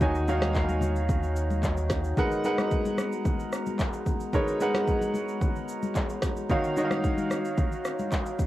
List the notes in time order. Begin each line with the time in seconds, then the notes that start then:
Already playing: D#2 D#4 F#4 C#5 F5
0.00 D#3 D#4 F#4 C#5 D#5 G#5, kick, low conga, shaker
0.15 shaker
0.28 D#3 D#4 F#4 C#5 F5, high conga, shaker
0.42 cross-stick, snare, high conga, shaker
0.55 kick, clap, shaker
0.69 high conga, shaker
0.81 high conga, low conga, shaker
0.96 shaker
1.09 kick, low conga, shaker
1.23 shaker
1.36 shaker
1.50 high conga, shaker
1.63 kick, clap, shaker
1.77 shaker
1.90 kick, cross-stick, snare, shaker
2.04 shaker
2.17 G#3 B3 D#4 F#4 A#4 B4 F#5 A#5, kick, low conga, shaker
2.31 shaker
2.44 G#3 D#4 A#4 B4 F#5, high conga, shaker
2.58 cross-stick, high conga, shaker
2.71 kick, shaker
2.85 high conga, shaker
2.98 cross-stick, high conga, shaker
3.12 shaker
3.25 kick, low conga, shaker
3.40 shaker
3.52 cross-stick, shaker
3.66 high conga, shaker
3.79 kick, clap, shaker
3.93 shaker
4.06 kick, shaker
4.20 shaker
4.33 G#3 D#4 A#4 B4 C#5, kick, low conga, shaker
4.48 shaker
4.60 G#3 D#4 A#4 B4 F#5, high conga, shaker
4.74 cross-stick, snare, high conga, shaker
4.88 kick, shaker
5.01 high conga, shaker
5.14 high conga, shaker
5.29 shaker
5.41 kick, low conga, shaker
5.56 shaker
5.69 shaker
5.83 high conga, shaker
5.96 kick, clap, shaker
6.10 shaker
6.22 kick, cross-stick, snare, shaker
6.37 shaker
6.50 D#3 D#4 F#4 C#5 F5, kick, low conga, shaker
6.64 shaker
6.77 D#3 D#4 F#4 C#5 D#5, high conga, shaker
6.85 F5
6.91 cross-stick, high conga, shaker
7.04 kick, shaker
7.17 high conga, shaker
7.30 cross-stick, high conga, shaker
7.45 shaker
7.58 kick, low conga, shaker
7.72 shaker
7.85 cross-stick, shaker
7.99 high conga, shaker
8.12 kick, clap, shaker
8.26 shaker
8.39 kick, shaker